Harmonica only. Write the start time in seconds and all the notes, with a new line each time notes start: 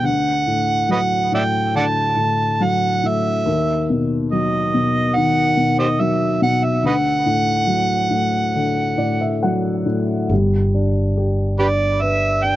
0.05 F#5
0.92 B4 D#5 F#5
1.34 D5 E5 G5
1.76 D5 F#5 A5
2.64 F#5
3.07 E5
4.32 D#5
5.15 F#5
5.79 G4 C5 D#5
6.01 E5
6.43 F#5
6.63 E5
6.86 B4 D#5 F#5
11.59 G4 B4 D5
12.01 E5
12.43 G5